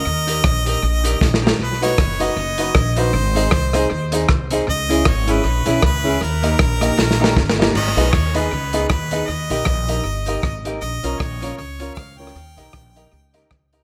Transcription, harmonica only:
X:1
M:4/4
L:1/8
Q:"Swing" 1/4=156
K:G#m
V:1 name="Harmonica"
d6- d z | B c2 d4 ^B- | ^B4- B z3 | d2 c B3 B2 |
A6- A z | d2 c B3 B2 | d6- d z | d2 c2 c2 ^e =g- |
=g6 z2 |]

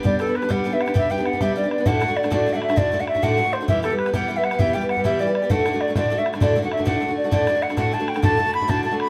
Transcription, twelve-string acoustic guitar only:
X:1
M:12/8
L:1/16
Q:3/8=132
K:G
V:1 name="Twelve-string acoustic guitar"
[G,B,DG]2 [G,B,DG] [B,DG]2 [B,DG] [G,B,DG]2 [G,B,DG] [B,DG]2 [B,DG] [G,B,DG]2 [G,B,DG] [B,DG]2 [B,DG] [G,B,DG]2 [G,B,DG] [B,DG]2 [B,DG] | [D,,A,,D,A,DF]2 [D,A,DF] [D,A,DF]2 [D,A,DF] [D,,A,,D,A,DF]2 [D,A,DF] [D,A,DF]2 [D,A,DF] [D,,A,,D,A,DF]2 [D,A,DF] [D,A,DF]2 [D,A,DF] [D,,A,,D,A,DF]2 [D,A,DF] [D,A,DF]2 [D,A,DF] | [E,G,B,G]2 [E,G,B,G] [G,B,G]2 [G,B,G] [E,G,B,G]2 [E,G,B,G] [G,B,G]2 [G,B,G] [E,G,B,G]2 [E,G,B,G] [G,B,G]2 [G,B,G] [E,G,B,G]2 [E,G,B,G] [G,B,G]2 [G,B,G] | [D,,A,,D,A,DF]2 [D,A,DF] [D,A,DF]2 [D,A,DF] [D,,A,,D,A,DF]2 [D,A,DF] [D,A,DF]2 [D,A,DF] [D,,A,,D,A,DF]2 [D,A,DF] [D,A,DF]2 [D,A,DF] [D,,A,,D,A,DF]2 [D,A,DF] [D,A,DF]2 [D,A,DF] |
[D,,A,,D,A,DF]2 [D,A,DF] [D,A,DF]2 [D,A,DF] [D,,A,,D,A,DF]2 [D,A,DF] [D,A,DF]2 [D,A,DF] [D,,A,,D,A,DF]2 [D,A,DF] [D,A,DF]2 [D,A,DF] [D,,A,,D,A,DF]2 [D,A,DF] [D,A,DF]2 z |]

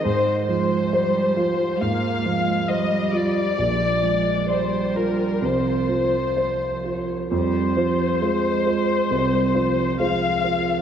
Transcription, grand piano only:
X:1
M:4/4
L:1/8
Q:1/4=67
K:Fm
V:1 name="Grand piano"
A,, F, c F A,, F, c F | B,,, F, =d F C,, F, c F | F,, [Fc] [A,Fc] [Fc] C,, [Fc] [A,Fc] [Fc] |]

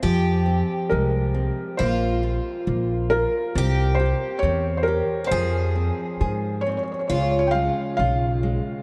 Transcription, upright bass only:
X:1
M:2/4
L:1/8
Q:1/4=68
K:Fm
V:1 name="Upright bass" clef=bass
F,,2 C,,2 | B,,,2 B,,,2 | C,,2 =E,,2 | F,,2 A,,2 |
D,,2 =B,,,2 |]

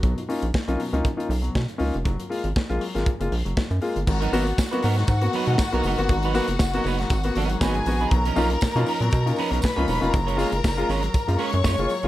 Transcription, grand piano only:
X:1
M:4/4
L:1/16
Q:"Swing 16ths" 1/4=119
K:G#dor
V:1 name="Grand piano"
[B,,F,] [DE] [A,CDE] z2 [A,CDE] [B,,F,] [A,CDE] z [A,CDE] z [B,,F,] z2 [A,CDE] z | F, [A,E] [G,A,E] z2 [G,A,E] F, [G,A,E] z [G,A,E] z F, z2 [G,A,E] z | [G,,D,] z [A,B,F] [B,F] z [A,B,F] z [G,,D,] z [A,B,F] z [G,,D,] z [A,B,F] [G,,D,] [A,B,F] | [G,,D,] z [A,B,F] [B,F] z [A,B,F] z [G,,D,] z [A,B,F] z [G,,D,] [B,F] [G,,D,] [B,F] z |
[B,,F,] z [A,CDE] [DE] z [A,CDE] z [B,,F,] z [A,CDE] z [B,,F,] z [A,CDE] [B,,F,] [A,CDE] | F, z [G,A,E] [A,E] z [G,A,E] z F, z [G,A,E] z F, z [G,A,E] F, [G,A,E] |]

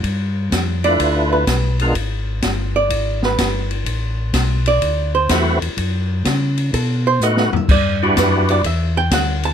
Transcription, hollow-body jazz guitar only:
X:1
M:4/4
L:1/8
Q:"Swing" 1/4=126
K:Dmix
V:1 name="Hollow-body jazz guitar"
z3 d2 B2 z | z3 d2 B2 z | z3 d2 c2 z | z4 A c (3^d f e |
d F B d e g f a |]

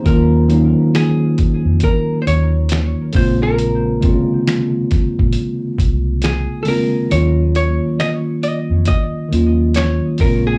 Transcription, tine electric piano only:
X:1
M:4/4
L:1/16
Q:"Swing 16ths" 1/4=68
K:Ebm
V:1 name="Tine electric piano"
[E=c] z12 z3 | z16 | z16 |]
V:2 name="Tine electric piano"
[E,G,B,DF]2 [E,G,B,DE]8 z4 [D,A,B,=CF]2- | [D,A,B,=CF]2 [=C,D,A,B,CF]8 z4 [D,A,B,CF]2 | [E,G,B,DF]8 z2 [E,F,G,B,DF]4 [D,A,B,=CF]2 |]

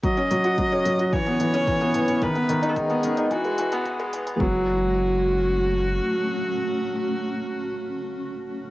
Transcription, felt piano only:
X:1
M:4/4
L:1/16
Q:1/4=110
K:F#dor
V:1 name="Felt piano" clef=bass
F, C F, F F, C F, F E, B, E, C E, B, E, C | D, B, D, D D, B, D, D E, G, E, B, E, G, E, B, | F,2 z12 z2 | z16 |]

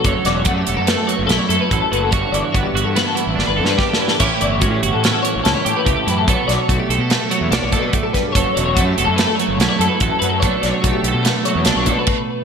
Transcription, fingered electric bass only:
X:1
M:5/4
L:1/16
Q:1/4=145
K:Bm
V:1 name="Fingered electric bass" clef=bass
F,,, z E,,,2 F,,2 E,,, F,,2 z2 F,,, B,,, z F,, z A,,, z F,,,2 | G,,, z G,,, z G,,, z G,,, G,,2 z2 A,,, G,,, G,,, G,,2 z4 | A,,, z G,,,2 A,,2 G,,, A,,2 z2 A,,, C,, z A,, z C,, z F,,2 | B,,, z B,,, z B,,, z B,,, B,,2 z2 E,, B,,, B,,, B,,2 z4 |
F,,, z E,,,2 F,,2 E,,, F,,2 z2 F,,, B,,, z F,, z A,,, z F,,2 | B,,, z B,,, z B,,, z B,,, B,,2 z2 E,, B,,, B,,, B,, z4 z |]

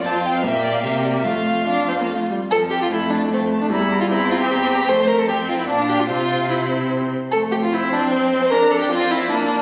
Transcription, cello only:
X:1
M:3/4
L:1/8
Q:1/4=151
K:F
V:1 name="Cello" clef=bass
F,,2 B,,2 C,2 | F,,4- F,, z | F,,2 F,,2 F,,2 | E,,2 E,,2 E,,2 |
F,,4 B,,2 | C,4- C, z | F,,6- | F,,6 |]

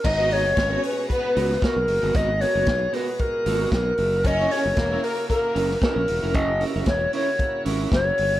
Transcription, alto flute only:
X:1
M:4/4
L:1/8
Q:1/4=114
K:G#m
V:1 name="Alto flute"
d c2 B B2 A2 | d c2 B A2 A2 | d c2 A A2 A2 | d2 c c2 z c2 |]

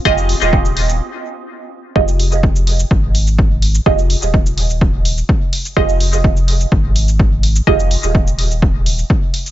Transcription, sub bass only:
X:1
M:4/4
L:1/16
Q:1/4=126
K:Fm
V:1 name="Sub bass" clef=bass
F,,,2 z E,,,4- E,,, z8 | F,,,6- F,,, z A,,,6- A,,, z | F,,,2 z E,,,8 z4 z | F,,,6- F,,, z A,,,6- A,,, z |
F,,,2 z E,,,8 z4 z |]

